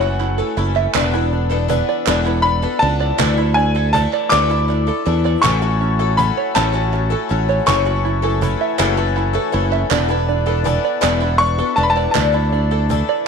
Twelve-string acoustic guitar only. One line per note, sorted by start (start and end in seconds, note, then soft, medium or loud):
0.01 0.39 E3 soft
0.01 0.38 A3 soft
0.01 0.38 C#4 medium
0.01 0.37 A4 medium
0.38 0.56 E3 soft
0.38 0.56 A3 soft
0.38 0.56 C#4 medium
0.38 0.57 A4 medium
0.57 0.93 E3 medium
0.57 0.94 A3 medium
0.57 0.95 C#4 medium
0.57 0.95 A4 medium
0.95 1.13 E3 medium
0.95 1.13 B3 medium
0.95 1.14 D4 loud
0.95 1.12 A4 medium
1.14 1.51 B3 soft
1.14 1.50 D4 medium
1.14 1.49 A4 medium
1.50 1.68 B3 soft
1.50 1.69 D4 medium
1.50 1.69 A4 medium
1.68 2.06 E3 medium
1.68 2.06 B3 medium
1.68 2.07 D4 medium
1.68 2.08 A4 medium
2.07 2.26 E3 medium
2.07 2.26 B3 medium
2.07 2.25 D4 loud
2.07 2.24 A4 loud
2.26 2.63 B3 soft
2.26 2.62 D4 soft
2.26 2.61 A4 medium
2.62 2.80 B3 medium
2.62 2.81 D4 medium
2.62 2.81 A4 medium
2.81 3.17 E3 medium
2.81 3.18 B3 medium
2.81 3.19 D4 medium
2.81 3.18 A4 medium
3.18 3.37 D3 medium
3.18 3.38 E3 medium
3.18 3.38 A3 medium
3.18 3.37 E4 medium
3.18 3.36 A4 medium
3.37 3.76 A3 soft
3.37 3.75 E4 soft
3.37 3.73 A4 medium
3.75 3.93 A3 soft
3.75 3.93 E4 soft
3.75 3.94 A4 soft
3.93 4.30 E3 medium
3.93 4.30 A3 medium
3.93 4.31 E4 medium
3.93 4.31 A4 medium
4.31 4.50 D3 medium
4.31 4.50 E3 medium
4.31 4.50 A3 medium
4.31 4.50 E4 medium
4.31 4.49 A4 medium
4.50 4.88 A3 soft
4.50 4.87 E4 medium
4.50 4.86 A4 medium
4.87 5.05 A3 soft
4.87 5.05 E4 medium
4.87 5.06 A4 medium
5.06 5.42 E3 medium
5.06 5.42 A3 medium
5.06 5.44 E4 medium
5.06 5.43 A4 medium
5.43 5.62 A2 medium
5.43 5.62 E3 medium
5.43 5.62 F#3 medium
5.43 5.61 A3 medium
5.43 5.61 C#4 medium
5.43 5.60 A4 medium
5.62 6.00 F#3 medium
5.62 5.99 A3 soft
5.62 5.99 C#4 soft
5.62 5.98 A4 medium
5.99 6.17 F#3 soft
5.99 6.17 A3 soft
5.99 6.18 C#4 medium
5.99 6.18 A4 soft
6.18 6.54 F#3 medium
6.18 6.54 A3 medium
6.18 6.54 C#4 medium
6.18 6.55 A4 medium
6.55 6.74 A2 medium
6.55 6.74 E3 medium
6.55 6.73 F#3 medium
6.55 6.73 A3 medium
6.55 6.72 C#4 loud
6.55 6.71 A4 medium
6.72 7.11 F#3 soft
6.72 7.10 A3 soft
6.72 7.10 C#4 medium
6.72 7.09 A4 medium
7.10 7.28 F#3 soft
7.10 7.29 A3 soft
7.10 7.29 C#4 soft
7.10 7.29 A4 medium
7.29 7.66 F#3 medium
7.29 7.66 A3 medium
7.29 7.66 C#4 medium
7.29 7.66 A4 medium
7.66 7.85 F#2 medium
7.66 7.86 C#3 medium
7.66 7.86 E3 medium
7.66 7.85 A3 medium
7.66 7.85 C#4 medium
7.66 7.84 A4 medium
7.85 8.22 E3 soft
7.85 8.22 A3 soft
7.85 8.22 C#4 medium
7.85 8.21 A4 medium
8.22 8.40 E3 soft
8.22 8.41 A3 soft
8.22 8.41 C#4 medium
8.22 8.41 A4 medium
8.41 8.78 E3 medium
8.41 8.78 A3 medium
8.41 8.78 C#4 medium
8.41 8.78 A4 medium
8.78 8.97 F#2 loud
8.78 8.98 C#3 loud
8.78 8.97 E3 loud
8.78 8.97 A3 medium
8.78 8.97 C#4 loud
8.78 8.96 A4 loud
8.97 9.34 E3 medium
8.97 9.34 A3 medium
8.97 9.33 C#4 medium
8.97 9.32 A4 medium
9.33 9.51 E3 soft
9.33 9.52 A3 medium
9.33 9.52 C#4 medium
9.33 9.53 A4 medium
9.52 9.89 E3 medium
9.52 9.90 A3 medium
9.52 9.91 C#4 medium
9.52 9.90 A4 medium
9.90 10.09 E3 medium
9.90 10.10 B3 medium
9.90 10.09 D4 medium
9.90 10.07 A4 loud
10.09 10.47 B3 medium
10.09 10.45 D4 medium
10.09 10.45 A4 medium
10.46 10.64 B3 soft
10.46 10.65 D4 medium
10.46 10.65 A4 medium
10.64 11.00 E3 medium
10.64 11.00 B3 medium
10.64 11.01 D4 medium
10.64 11.01 A4 medium
11.01 11.21 E3 loud
11.01 11.21 B3 medium
11.01 11.20 D4 medium
11.01 11.19 A4 loud
11.20 11.59 B3 soft
11.20 11.58 D4 medium
11.20 11.57 A4 medium
11.58 11.76 B3 medium
11.58 11.77 D4 soft
11.58 11.77 A4 medium
11.77 12.13 E3 medium
11.77 12.14 B3 medium
11.77 12.14 D4 medium
11.77 12.14 A4 medium
12.14 12.33 D3 medium
12.14 12.33 E3 medium
12.14 12.33 A3 medium
12.14 12.32 D4 medium
12.14 12.31 A4 medium
12.32 12.72 A3 soft
12.32 12.71 D4 medium
12.32 12.70 A4 medium
12.71 12.89 A3 soft
12.71 12.90 D4 soft
12.71 12.90 A4 medium
12.89 13.26 E3 medium
12.89 13.26 A3 medium
12.89 13.26 D4 medium
12.89 13.27 A4 medium